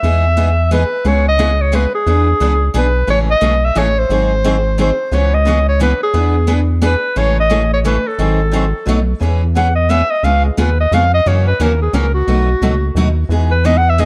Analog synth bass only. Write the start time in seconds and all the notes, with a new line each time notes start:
0.03 E2
1.05 C#2
2.07 E2
2.41 C#2
2.74 B1
3.08 A1
3.42 B1
3.76 A1
4.10 G#1
5.12 C#2
6.14 E2
7.16 A1
8.19 G#1
8.87 B1
9.21 E2
10.23 C#2
10.58 D#2
10.92 F2
11.26 F#2
11.60 D#2
11.93 C#2
12.28 B1
12.62 C#2
12.95 D#2
13.29 E2